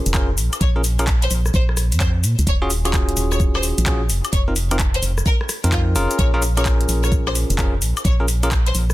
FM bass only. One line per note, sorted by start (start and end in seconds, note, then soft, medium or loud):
0.06 0.39 F1 loud
0.38 0.49 A#1 medium
0.61 1.28 A#1 loud
1.31 1.50 A#1 medium
1.54 1.94 A#1 loud
1.92 2.25 F2 medium
2.23 2.35 A#2 medium
2.39 2.45 C#2 medium
2.47 3.14 D#1 loud
3.16 3.73 D#1 medium
3.78 4.11 A#1 loud
4.09 4.21 F1 medium
4.33 5.00 F1 loud
5.02 5.22 F1 medium
5.64 5.97 F2 medium
5.95 6.07 F1 loud
6.19 6.86 A#1 loud
6.88 7.45 A#1 medium
7.50 7.83 F1 loud
7.82 7.93 A#1 medium
8.05 8.72 A#1 loud
8.75 8.94 A#1 medium